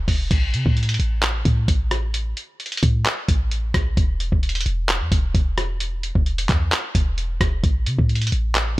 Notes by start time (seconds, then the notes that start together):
0.08 E1, kick, open hi-hat
0.31 A1, kick, closed hi-hat, crash
0.54 C3, closed hi-hat
0.66 A2, kick
0.77 closed hi-hat
0.83 closed hi-hat
0.89 closed hi-hat
0.94 closed hi-hat
1.00 A1, closed hi-hat
1.22 clap, closed hi-hat
1.45 A2, kick, closed hi-hat
1.68 A1, kick, closed hi-hat
1.91 cross-stick, closed hi-hat
2.14 closed hi-hat
2.37 closed hi-hat
2.60 closed hi-hat
2.66 closed hi-hat
2.72 closed hi-hat
2.77 closed hi-hat
2.83 A2, kick, closed hi-hat
3.06 clap, closed hi-hat
3.29 A1, kick, closed hi-hat
3.51 closed hi-hat
3.74 A1, kick, cross-stick, closed hi-hat
3.97 E1, kick, closed hi-hat
4.20 closed hi-hat
4.32 E1, kick
4.43 closed hi-hat
4.49 closed hi-hat
4.55 closed hi-hat
4.61 closed hi-hat
4.66 E1, closed hi-hat
4.89 clap, closed hi-hat
5.01 E2
5.12 E1, kick, closed hi-hat
5.35 E1, kick, closed hi-hat
5.58 cross-stick, closed hi-hat
5.80 closed hi-hat
6.03 closed hi-hat
6.15 E1, kick
6.26 closed hi-hat
6.38 closed hi-hat
6.49 E2, kick, clap, closed hi-hat
6.72 clap, closed hi-hat
6.95 E1, kick, closed hi-hat
7.18 closed hi-hat
7.41 E1, kick, cross-stick, closed hi-hat
7.64 A1, kick, closed hi-hat
7.86 C3, closed hi-hat
7.99 A2, kick
8.09 closed hi-hat
8.15 closed hi-hat
8.22 closed hi-hat
8.27 closed hi-hat
8.32 A1, closed hi-hat
8.55 clap, closed hi-hat